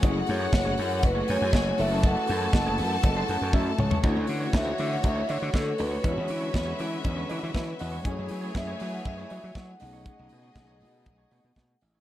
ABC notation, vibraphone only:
X:1
M:4/4
L:1/16
Q:1/4=120
K:F#m
V:1 name="Vibraphone"
z2 c6 B2 c4 e2 | f12 z4 | z4 e3 f e2 c2 A2 B2 | c6 z8 z2 |
z4 e3 f e4 f2 f2- | f12- f2 z2 |]